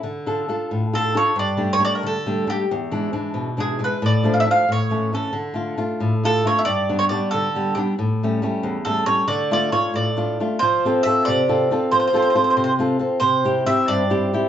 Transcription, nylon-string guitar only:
\new Staff \with { instrumentName = "Nylon-string guitar" } { \time 6/8 \key d \minor \tempo 4. = 91 d8 <d' f' a'>8 <d' f' a'>8 a,8 <d' f' a'>8 <d' f' a'>8 | g,8 <g a d'>8 <g a d'>8 d8 <g a d'>8 <g a d'>8 | e,8 <e gis d'>8 <e gis d'>8 b,8 <e gis d'>8 <e gis d'>8 | a,8 <f a d'>8 <f a d'>8 a,8 <e a cis'>8 <e a cis'>8 |
d8 <a d' f'>8 <a d' f'>8 a,8 <a d' f'>8 <a d' f'>8 | g,8 <g b d'>8 <g b d'>8 d8 <g b d'>8 <g b d'>8 | a,8 <g a cis'>8 <g a cis'>8 e,8 <g a cis'>8 <g a cis'>8 | d8 <a d' f'>8 <a d' f'>8 a,8 <a d' f'>8 <a d' f'>8 |
\key f \major f8 <c' f' a'>8 <c' f' a'>8 c8 <c' f' a'>8 <c' f' a'>8 | f8 <c' f' a'>8 <c' f' a'>8 c8 <c' f' a'>8 <c' f' a'>8 | c8 <c' e' g'>8 <c' e' g'>8 g,8 <c' e' g'>8 <c' e' g'>8 | }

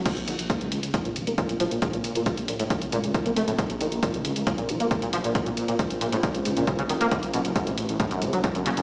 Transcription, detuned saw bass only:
\new Staff \with { instrumentName = "Detuned saw bass" } { \clef bass \time 4/4 \key bes \minor \tempo 4 = 136 r16 bes,,16 bes,,16 bes,,16 r16 des,16 des,16 des,16 r16 f,,16 f,,16 f,,16 r16 bes,,16 bes,,16 bes,,16 | r16 bes,16 bes,16 bes,16 r16 bes,,16 bes,,16 bes,,16 r16 des,16 des,16 des,16 r16 f,,16 f,,16 f,,16 | r16 bes,,16 bes,,16 bes,,16 r16 des,16 des,16 des,16 r16 f,,16 f,,16 f,,16 r16 bes,,16 bes,,16 bes,,16 | r16 bes,16 bes,16 bes,16 r16 bes,,16 bes,,16 bes,,16 r16 des,16 des,16 des,16 r16 f,,16 f,,16 f,,16 |
r16 ges,,16 ges,,16 ges,,16 r16 a,,16 a,,16 a,,16 r16 e,,16 e,,16 e,,16 r16 ges,,16 ges,,16 ges,,16 | }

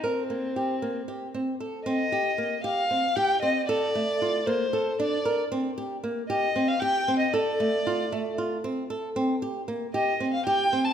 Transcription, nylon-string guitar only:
\new Staff \with { instrumentName = "Nylon-string guitar" } { \time 7/8 \key c \dorian \tempo 4 = 115 bes'8 bes8 g'8 bes8 g'8 c'8 a'8 | c'8 g'8 bes8 g'8 c'8 g'8 c'8 | a'8 a8 f'8 bes8 a'8 d'8 bes'8 | c'8 g'8 bes8 g'8 c'8 g'8 c'8 |
a'8 a8 f'8 a8 f'8 c'8 a'8 | c'8 g'8 bes8 g'8 c'8 g'8 c'8 | }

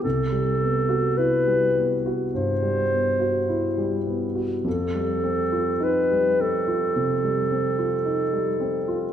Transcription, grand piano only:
\new Staff \with { instrumentName = "Grand piano" } { \time 4/4 \key c \lydian \tempo 4 = 52 c,16 g16 b16 fis'16 e'16 g16 b16 fis'16 g,16 g16 b16 fis'16 e'16 g16 b16 fis'16 | f,16 g16 c'16 f'16 ees'16 g16 c'16 f'16 c16 g16 c'16 f'16 ees'16 g16 c'16 f'16 | }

